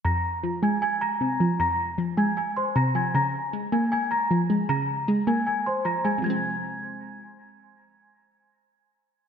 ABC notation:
X:1
M:4/4
L:1/8
Q:1/4=155
K:Fm
V:1 name="Celesta"
[bb']2 z [aa'] [aa'] [bb']3 | [bb']2 z [aa'] [aa'] [cc'] [bb'] [aa'] | [bb']2 z [aa'] [aa'] [bb']3 | [bb']2 z [aa'] [aa'] [cc'] [bb'] [aa'] |
a'6 z2 | z8 |]
V:2 name="Synth pluck" clef=bass
F,,2 F, A,3 C, F, | F,,2 F, A,3 C, F, | D,2 A, B,3 F, A, | D,2 A, B,3 F, A, |
[C,F,A,C]8- | [C,F,A,C]8 |]